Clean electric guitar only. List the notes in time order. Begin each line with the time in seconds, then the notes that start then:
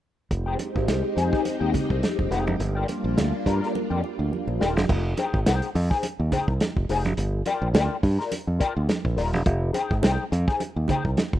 0.31 muted clean electric guitar stroke
0.46 D#4 G#4 C5 G5
0.59 muted clean electric guitar stroke
0.75 muted clean electric guitar stroke
0.87 muted clean electric guitar stroke
1.03 muted clean electric guitar stroke
1.16 D#4 G#4 C5 G#5
1.32 D#4 G#4 C5 G#5
1.44 muted clean electric guitar stroke
1.60 D#4 G#4 C5 G5
1.73 muted clean electric guitar stroke
1.89 muted clean electric guitar stroke
2.02 muted clean electric guitar stroke
2.19 muted clean electric guitar stroke
2.30 D#4 G#4 C5 G5
2.47 muted clean electric guitar stroke
2.60 muted clean electric guitar stroke
2.75 F4 A#4 D5 G5
2.88 muted clean electric guitar stroke
3.04 muted clean electric guitar stroke
3.17 muted clean electric guitar stroke
3.33 muted clean electric guitar stroke
3.46 F4 A#4 D5 A#5
3.61 F4 A#4 D5 A#5
3.74 muted clean electric guitar stroke
3.90 F4 A#4 D5 G5
4.03 muted clean electric guitar stroke
4.19 muted clean electric guitar stroke
4.31 muted clean electric guitar stroke
4.48 muted clean electric guitar stroke
4.60 F4 A#4 D5 G5
4.76 muted clean electric guitar stroke
5.17 D#4 G#4 C5 G5
5.46 D#4 G#4 C5 G5
5.75 muted clean electric guitar stroke
5.90 D#4 G#4 C5 G#5
6.20 muted clean electric guitar stroke
6.32 D#4 G#4 C5 G5
6.49 muted clean electric guitar stroke
6.61 muted clean electric guitar stroke
6.89 D#4 G#4 C5 G#5
7.05 muted clean electric guitar stroke
7.46 F4 A#4 D5 G5
7.74 F4 A#4 D5 G5
8.03 muted clean electric guitar stroke
8.19 F4 A#4 D5 A#5
8.47 muted clean electric guitar stroke
8.59 F4 A#4 D5 G5
8.76 muted clean electric guitar stroke
8.88 muted clean electric guitar stroke
9.17 F4 A#4 D5 A#5
9.33 muted clean electric guitar stroke
9.73 D#4 G#4 C5 G5
10.02 D#4 G#4 C5 G5
10.31 muted clean electric guitar stroke
10.48 D#4 G#4 C5 G#5
10.77 muted clean electric guitar stroke
10.89 D#4 G#4 C5 G5
11.05 muted clean electric guitar stroke
11.18 muted clean electric guitar stroke